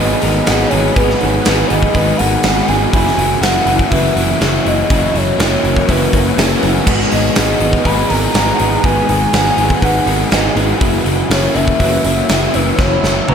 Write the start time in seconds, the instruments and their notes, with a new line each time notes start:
Already playing: picked electric bass G#1, overdriven electric guitar G#2 D#3, clean electric guitar G#2 D#3 F#3 G#4 B4, ambient pad G#4 F#5 B5, soft synth lead D#5
0.00 overdriven electric guitar G#3 B3 D#4, clean electric guitar B3 D#4 G#4
0.21 picked electric bass G#1, clean electric guitar F#3 B3 D#4 G#4 A#4, overdriven electric guitar G#3 B3 D#4, open hi-hat
0.46 picked electric bass G#1, overdriven electric guitar G#2 D#3 G#3 B3 D#4, clean electric guitar F#3 B3 D#4 G#4, snare, open hi-hat
0.69 clean electric guitar B3 D#4 G#4, overdriven electric guitar D#4, soft synth lead C#5, open hi-hat
0.73 picked electric bass G#1, clean electric guitar F#3, overdriven electric guitar G#3 B3
0.95 picked electric bass G#1, clean electric guitar G#2 D#3 F#3 B3 D#4 G#4 B4, overdriven electric guitar G#2 D#3 G#3 B3, soft synth lead B4, kick, open hi-hat
0.99 overdriven electric guitar D#4
1.10 snare
1.20 picked electric bass G#1, clean electric guitar F#3 B3 D#4 G#4, overdriven electric guitar G#3 B3 D#4, open hi-hat
1.45 picked electric bass G#1, overdriven electric guitar D#3 G#3 B3 D#4, clean electric guitar F#3 B3 D#4 G#4, snare, open hi-hat
1.67 picked electric bass G#1, overdriven electric guitar B3 D#4, soft synth lead D#5, open hi-hat
1.72 overdriven electric guitar G#2 D#3 G#3
1.83 kick
1.94 picked electric bass G#1, clean electric guitar G#2 D#3 F#3 B3 D#4 G#4 B4, overdriven electric guitar D#3 G#3 B3 D#4, kick, open hi-hat
2.18 picked electric bass G#1, clean electric guitar F#3 B3 D#4 G#4 A#4, overdriven electric guitar B3 D#4, soft synth lead F#5, open hi-hat
2.22 overdriven electric guitar G#3
2.43 picked electric bass G#1, overdriven electric guitar G#2 D#3 G#3 B3 D#4, clean electric guitar F#3 B3 D#4 G#4, snare, open hi-hat
2.67 picked electric bass G#1, clean electric guitar F#3 B3 D#4 G#4, overdriven electric guitar G#3 B3 D#4, soft synth lead G#5, open hi-hat
2.91 picked electric bass F#1, overdriven electric guitar F#2 C#3 E3, clean electric guitar F#3 C#4 B5, ambient pad C#5 F#5, soft synth lead G#5, kick, open hi-hat
2.95 overdriven electric guitar A#3 E4, clean electric guitar E4
3.07 snare
3.17 picked electric bass F#1, overdriven electric guitar E3 A#3 E4, clean electric guitar C#4 E4, open hi-hat
3.41 picked electric bass F#1, overdriven electric guitar C#3 E3 A#3 E4, clean electric guitar F#3 C#4 E4 A#4, soft synth lead F#5, snare, open hi-hat
3.66 picked electric bass F#1, overdriven electric guitar F#2 C#3 E3 A#3 E4, open hi-hat
3.79 kick
3.90 picked electric bass F#1, overdriven electric guitar C#3 E3 A#3, clean electric guitar F#3 C#4 E4 B4, soft synth lead E5, kick, open hi-hat
3.94 overdriven electric guitar E4
4.15 picked electric bass F#1, overdriven electric guitar E3 A#3 E4, clean electric guitar C#4 E4 A#4, open hi-hat
4.39 picked electric bass F#1, overdriven electric guitar F#2 C#3 E3 A#3 E4, clean electric guitar F#3 C#4 E4 G#4, snare, open hi-hat
4.64 picked electric bass F#1, overdriven electric guitar E3 A#3 E4, clean electric guitar C#4 E4 G#4, soft synth lead D#5, open hi-hat
4.89 picked electric bass F#1, overdriven electric guitar F#2 C#3 E3 A#3 E4, clean electric guitar F#3 C#4 E4 B5, ambient pad G#5, kick, open hi-hat
5.13 picked electric bass F#1, overdriven electric guitar E3 A#3 E4, clean electric guitar C#4 E4, open hi-hat
5.17 soft synth lead C#5
5.38 picked electric bass F#1, overdriven electric guitar C#3 E3 A#3 E4, clean electric guitar F#3 C#4 E4 A#4, snare, open hi-hat
5.63 picked electric bass F#1, overdriven electric guitar F#2 C#3 E3 A#3 E4, open hi-hat
5.76 kick
5.88 picked electric bass F#1, overdriven electric guitar C#3 E3 A#3 E4, clean electric guitar F#3 C#4 E4 B4, soft synth lead B4, kick, open hi-hat
6.12 picked electric bass F#1, overdriven electric guitar E3 A#3 E4, clean electric guitar C#4 E4 A#4, kick, open hi-hat
6.36 picked electric bass F#1, overdriven electric guitar F#2 C#3 E3 A#3 E4, clean electric guitar F#3 C#4 E4 G#4, snare, open hi-hat
6.61 picked electric bass F#1, overdriven electric guitar A#3 E4, clean electric guitar B3 C#4 E4 G#4, open hi-hat
6.65 overdriven electric guitar E3
6.85 picked electric bass G#1, clean electric guitar G#2 D#3 F#3 B3 D#4 G#4 B4, overdriven electric guitar G#2 D#3 G#3 B3 D#4, ambient pad G#4 B4 F#5, kick, crash
7.00 snare
7.10 picked electric bass G#1, clean electric guitar F#3 B3 D#4 G#4, overdriven electric guitar G#3 B3 D#4, soft synth lead D#5, open hi-hat
7.34 picked electric bass G#1, overdriven electric guitar D#3 G#3 B3 D#4, clean electric guitar F#3 B3 D#4 G#4, soft synth lead D#5, snare, open hi-hat
7.59 picked electric bass G#1, overdriven electric guitar G#2 D#3 G#3 B3 D#4, open hi-hat
7.73 kick
7.84 picked electric bass G#1, clean electric guitar G#2 D#3 F#3 B3 D#4 G#4 B4, overdriven electric guitar D#3 G#3 B3 D#4, soft synth lead B5, kick, open hi-hat
8.08 picked electric bass G#1, clean electric guitar F#3 B3 D#4 G#4 A#4, overdriven electric guitar B3 D#4, soft synth lead A#5, open hi-hat
8.13 overdriven electric guitar G#3
8.33 picked electric bass G#1, overdriven electric guitar G#2 D#3 G#3 B3 D#4, clean electric guitar F#3 B3 D#4 G#4, snare, open hi-hat
8.58 picked electric bass G#1, clean electric guitar F#3 B3 D#4 G#4, overdriven electric guitar G#3 B3 D#4, open hi-hat
8.83 picked electric bass G#1, overdriven electric guitar G#2 D#3 G#3 B3 D#4, clean electric guitar G#2 D#3 F#3 B3 D#4 G#4 B4, soft synth lead G#5, kick, open hi-hat
9.08 picked electric bass G#1, clean electric guitar F#3 B3 D#4 G#4, overdriven electric guitar G#3 B3 D#4, soft synth lead G#5, open hi-hat
9.32 picked electric bass G#1, overdriven electric guitar D#3 G#3 B3 D#4, clean electric guitar F#3 B3 D#4 G#4, snare, open hi-hat
9.56 picked electric bass G#1, overdriven electric guitar G#2 D#3 G#3 B3 D#4, open hi-hat
9.70 kick
9.81 picked electric bass G#1, clean electric guitar G#2 D#3 F#3 B3 D#4 G#4 B4, overdriven electric guitar D#3 G#3 B3 D#4, soft synth lead F#5, kick, open hi-hat
10.06 picked electric bass G#1, clean electric guitar F#3 B3 D#4 G#4 A#4, overdriven electric guitar G#3 B3 D#4, open hi-hat
10.30 picked electric bass G#1, overdriven electric guitar G#2 D#3 G#3 B3 D#4, clean electric guitar F#3 B3 D#4 G#4, soft synth lead D#5, snare, open hi-hat
10.55 picked electric bass G#1, clean electric guitar F#3 B3 D#4 G#4, overdriven electric guitar G#3 B3 D#4, open hi-hat
10.79 picked electric bass F#1, overdriven electric guitar F#2 C#3 E3 A#3 E4, clean electric guitar F#3 C#4 E4 B5, ambient pad C#5 E6, kick, open hi-hat
11.04 picked electric bass F#1, overdriven electric guitar E3 A#3 E4, clean electric guitar C#4 E4, open hi-hat
11.29 picked electric bass F#1, overdriven electric guitar C#3 E3 A#3 E4, clean electric guitar F#3 C#4 E4 A#4, soft synth lead C#5, snare, open hi-hat
11.53 picked electric bass F#1, overdriven electric guitar F#2 C#3 E3 A#3 E4, soft synth lead E5, open hi-hat
11.68 kick
11.78 picked electric bass F#1, overdriven electric guitar C#3 E3 A#3 E4, clean electric guitar F#3 C#4 E4 B4, kick, open hi-hat
12.03 picked electric bass F#1, overdriven electric guitar E3 A#3 E4, clean electric guitar C#4 E4 A#4, open hi-hat
12.28 picked electric bass F#1, overdriven electric guitar F#2 C#3 E3 A#3 E4, clean electric guitar F#3 C#4 E4 G#4, snare, open hi-hat
12.53 picked electric bass F#1, overdriven electric guitar E3 A#3 E4, clean electric guitar C#4 E4 G#4, soft synth lead B4, open hi-hat
12.77 picked electric bass F#1, overdriven electric guitar F#2 C#3 E3 A#3 E4, clean electric guitar F#3 C#4 E4 B5, soft synth lead C#5, ambient pad G#5, kick, snare
13.02 picked electric bass F#1, overdriven electric guitar E3 A#3 E4, clean electric guitar C#4 E4, snare
13.27 picked electric bass F#1, overdriven electric guitar C#3 E3 A#3 E4, clean electric guitar F#3 C#4 E4 A#5, soft synth lead B4, high tom